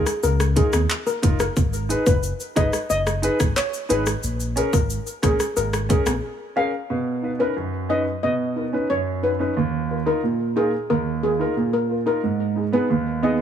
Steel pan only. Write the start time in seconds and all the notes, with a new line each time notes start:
0.23 A#4
0.57 G#4
1.07 A#4
1.40 A#4
2.06 B4
2.56 D#5
2.90 D#5
3.56 C#5
3.90 B4
4.73 A#4
5.23 G#4
5.57 A#4
5.90 G#4
6.57 F5
7.40 B4
7.90 D#5
8.23 D#5
8.90 C#5
9.23 B4
10.07 A#4
10.57 G#4
10.90 A#4
11.23 G#4
11.73 A#4
12.07 A#4
12.73 B4
13.23 D#5